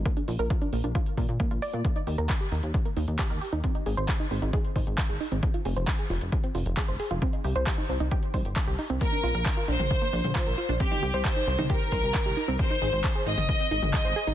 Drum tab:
HH |xxoxxxoxxxoxxxox|xxoxxxoxxxoxxxox|xxoxxxoxxxoxxxox|xxoxxxoxxxoxxxox|
CP |----------------|----x-------x---|----x-------x---|----x-------x---|
T2 |----------------|----------------|----------------|----------------|
BD |o---o---o-o-o---|o---o---o---o---|o---o---o-o-o---|o---o---o---o---|

HH |xxoxxxoxxxoxxxox|xxoxxxoxxxoxxxox|xxoxxxoxxxoxxxox|xxoxxxoxxxoxxxox|
CP |----x-------x---|----x-------x---|----x-------x---|----x-------x---|
T2 |----------------|-------o---o----|-o-----o--------|-------o---o----|
BD |o---o---o-o-o---|o---o---o---o---|o---o---o-o-o---|o---o---o---o---|